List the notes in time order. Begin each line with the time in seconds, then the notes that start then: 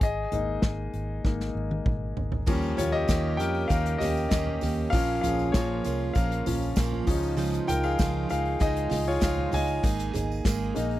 0.01 G#1 G#4 D#5, kick, closed hi-hat
0.32 G#1 G#3 A#3 D#4, closed hi-hat, floor tom
0.62 G#1, kick, snare, closed hi-hat
0.94 G#1, closed hi-hat
1.24 G#1 G#3 A#3 D#4, kick, snare
1.40 snare
1.55 G#1
1.71 high tom
1.86 G#1, kick, mid tom
2.17 G#1, floor tom
2.32 floor tom
2.46 D#2 D#3 F3 G3 A#3 C#4 G4, kick, crash, tambourine
2.62 tambourine
2.77 D#2 A#3 C#4 F4 G4 C#5, floor tom, hi-hat pedal, open hi-hat, tambourine
2.92 G4 D#5
3.08 D#2 D#3 A#3 C#4 G4, kick, snare, hi-hat pedal, open hi-hat, tambourine
3.37 F2 A#3 C#4 G4 A#4 G5, hi-hat pedal, open hi-hat, tambourine
3.55 open hi-hat
3.68 D#2 D#3 A#3 C#4 G4 A#4 F5, kick, hi-hat pedal, open hi-hat, tambourine
3.86 hi-hat pedal
3.98 D#2 C#4 G4 D#5, snare, floor tom, hi-hat pedal, open hi-hat, tambourine
4.02 A#3
4.17 tambourine
4.29 D#2 D#3 A#3 C#4 G4 D#5, kick, snare, hi-hat pedal, open hi-hat, tambourine
4.33 G4
4.47 floor tom
4.61 D#2 A#3 C#4 G4, floor tom, hi-hat pedal, open hi-hat, tambourine
4.90 A#1 A#2 F3 A#3 C#4 F5, kick, hi-hat pedal, open hi-hat, tambourine
4.94 C#4 F4 A#4
5.07 tambourine
5.21 A#1 A#3 C#4 F4 F5, floor tom, hi-hat pedal, open hi-hat, tambourine
5.26 G#4
5.39 tambourine
5.52 A#1 A#2 F3 A#3 F4 C#5, kick, snare, hi-hat pedal, open hi-hat, tambourine
5.56 C#4 F4
5.84 C2 A#3 C#4 F4, hi-hat pedal, open hi-hat, tambourine
6.00 open hi-hat
6.13 A#1 F3 A#3 C#4 A#4 F5, kick, hi-hat pedal, open hi-hat, tambourine
6.18 F4
6.31 hi-hat pedal
6.46 A#1 F3 A#3 C#4 F4, floor tom, hi-hat pedal, open hi-hat, tambourine
6.62 tambourine
6.76 A#1 A#2 F3 A#3 C#4 F4, kick, snare, hi-hat pedal, open hi-hat, tambourine
6.92 floor tom
7.06 C#2 F3 G#3 C#4 D#4 F4, kick, hi-hat pedal, open hi-hat, tambourine
7.22 open hi-hat, tambourine
7.37 C#3 F3 G#3 D#4 F4, hi-hat pedal, open hi-hat, tambourine
7.53 hi-hat pedal, tambourine
7.67 C#2 G#3 D#4 F4 A#4 G5, floor tom, hi-hat pedal, open hi-hat, tambourine
7.83 G#4 F5, tambourine
7.98 C#2 C#3 F3 G#3 D#4 F4, kick, snare, hi-hat pedal, open hi-hat, tambourine
8.29 C#2 G#3 D#4 F4 G#4 F5, hi-hat pedal, open hi-hat, tambourine
8.45 open hi-hat
8.59 C#2 F3 G#3 D#4 F4 G#4 D#5, kick, hi-hat pedal, open hi-hat, tambourine
8.76 hi-hat pedal
8.90 C#2 G#3 D#4 F4, snare, floor tom, hi-hat pedal, open hi-hat, tambourine
9.07 F4 C#5, tambourine
9.20 C#2 C#3 F3 G#3 D#4 F4 G#4 F5, kick, snare, hi-hat pedal, open hi-hat, tambourine
9.38 floor tom
9.52 C#2 G#3 D#4 F4 D#5 G#5, floor tom, hi-hat pedal, open hi-hat, tambourine
9.68 tambourine
9.83 G#1 G#3 A#3 D#4 G#4, kick, hi-hat pedal, open hi-hat, tambourine
9.99 hi-hat pedal, tambourine
10.14 G#1 A#3 D#4 G#4, floor tom, hi-hat pedal, open hi-hat, tambourine
10.32 tambourine
10.44 G#1 G#3 A#3 D#4 G#4, kick, snare, hi-hat pedal, open hi-hat, tambourine
10.74 A#1 G#3 A#3 D#4 G#4, hi-hat pedal, open hi-hat, tambourine
10.91 open hi-hat